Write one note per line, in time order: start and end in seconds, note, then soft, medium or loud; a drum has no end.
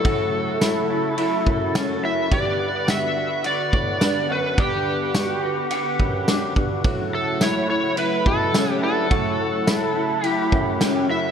0.00 2.27 C#3 medium
0.00 2.27 F#3 medium
0.00 2.27 A3 medium
0.00 2.27 E4 medium
0.00 2.28 F#4 medium
0.00 2.11 A4 medium
0.05 1.01 A2 medium
0.05 0.61 F#4 medium
0.05 kick loud
0.05 ride medium
0.61 0.89 E4 medium
0.61 snare loud
0.61 ride medium
0.61 tambourine medium
0.90 1.17 E4 medium
1.18 1.75 E4 medium
1.18 ride medium
1.46 2.00 F#2 medium
1.46 kick medium
1.75 2.03 C#4 loud
1.75 snare loud
1.75 ride medium
1.75 tambourine medium
2.03 2.30 F#2 medium
2.03 2.31 E4 medium
2.03 2.33 E5 loud
2.31 3.55 G2 loud
2.31 6.80 D3 medium
2.31 6.80 B3 medium
2.31 2.88 G4 medium
2.31 6.80 B4 medium
2.31 2.90 D5 loud
2.31 11.31 F#5 medium
2.31 kick loud
2.31 ride medium
2.88 3.15 F#4 medium
2.88 3.46 E5 loud
2.88 snare loud
2.88 ride medium
2.88 tambourine medium
3.16 3.43 F#4 medium
3.44 4.01 F#4 medium
3.44 4.33 D5 loud
3.44 ride medium
3.73 4.00 A2 medium
3.73 kick medium
4.01 4.28 G2 medium
4.01 4.30 D4 loud
4.01 snare loud
4.01 ride medium
4.01 tambourine medium
4.30 4.57 F#2 medium
4.30 4.57 F#4 medium
4.30 4.60 B4 medium
4.58 5.54 G2 loud
4.58 5.14 G4 medium
4.58 6.53 G4 medium
4.58 kick loud
4.58 ride medium
5.14 5.42 F#4 medium
5.14 snare loud
5.14 ride medium
5.14 tambourine medium
5.43 5.71 F#4 medium
5.71 6.28 F#5 medium
5.71 ride medium
5.99 6.53 F#2 medium
5.99 kick medium
6.28 6.56 D4 medium
6.28 snare loud
6.28 ride medium
6.28 tambourine medium
6.56 6.83 G2 medium
6.56 6.83 F#4 medium
6.56 kick medium
6.84 8.08 A2 loud
6.84 11.31 C#3 medium
6.84 11.31 F#3 medium
6.84 11.31 A3 medium
6.84 11.31 E4 medium
6.84 7.41 F#4 medium
6.84 kick loud
6.84 ride medium
7.15 7.43 A4 medium
7.41 7.68 E4 medium
7.41 7.69 C#5 medium
7.41 snare loud
7.41 ride medium
7.41 tambourine medium
7.69 7.97 E4 medium
7.69 7.98 C#5 medium
7.97 8.54 E4 medium
7.97 8.24 B4 medium
7.97 ride medium
8.26 8.53 B2 medium
8.26 8.72 A4 medium
8.26 kick medium
8.54 8.81 A2 medium
8.54 8.82 C#4 medium
8.54 snare loud
8.54 ride medium
8.54 tambourine medium
8.72 8.82 G4 medium
8.82 9.09 G2 medium
8.82 9.10 E4 medium
8.82 10.27 A4 medium
9.11 10.07 A2 medium
9.11 9.67 F#4 medium
9.11 kick loud
9.11 ride medium
9.67 9.94 E4 medium
9.67 snare loud
9.67 ride medium
9.67 tambourine medium
9.95 10.22 E4 medium
10.24 10.80 E4 medium
10.24 11.06 G4 medium
10.24 ride medium
10.52 11.06 F#2 medium
10.52 kick loud
10.80 11.09 C#4 loud
10.80 snare loud
10.80 ride medium
10.80 tambourine medium
11.09 11.31 F#2 loud
11.09 11.31 E4 medium
11.09 11.31 E5 loud